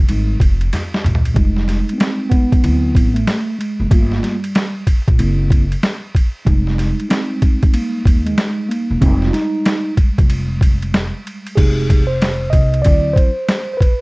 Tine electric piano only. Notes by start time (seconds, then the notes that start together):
0.08 G3 G#3 D#4
1.34 G3 G#3 D#4
1.93 B3
1.98 C4
2.30 B3
2.63 F#3 C4 E4
3.14 A3
3.58 G#3
3.91 A3 A#3 F4
4.23 G3
5.18 A#3 C4 E4
6.45 G3 G#3 D#4
7.09 C4
7.74 A#3
8.26 G#3
8.69 A#3
9.01 G3 G#3 C4 D#4
9.27 F4
9.33 D#4
11.56 G#3 D#4 G4 G#4
12.07 C5
12.50 D#5
12.82 F#3 C4 E4 D5
13.13 C5
13.73 B4 C5